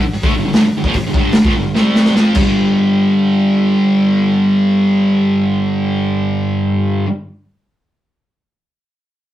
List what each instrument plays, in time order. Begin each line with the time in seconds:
0.04 muted distorted electric guitar stroke
0.14 muted distorted electric guitar stroke, open hi-hat
0.23 distorted electric guitar D3 A3, kick
0.36 distorted electric guitar G2 D3
0.45 distorted electric guitar G2 D3
0.53 distorted electric guitar G2 D3, snare, open hi-hat
0.68 muted distorted electric guitar stroke
0.77 distorted electric guitar G2 D3
0.84 distorted electric guitar A#2 F3, kick
0.93 muted distorted electric guitar stroke, kick, open hi-hat
1.07 distorted electric guitar G2 D3
1.14 distorted electric guitar G2 D3 G3, kick
1.32 muted distorted electric guitar stroke, snare, open hi-hat
1.45 distorted electric guitar A#2 F3, kick
1.55 distorted electric guitar G2 D3
1.74 distorted electric guitar C3 G3 C4, snare
1.95 snare
2.05 snare
2.15 distorted electric guitar F3 C4 F4, snare
2.33 distorted electric guitar G2 D3, kick, crash
2.39 distorted electric guitar G3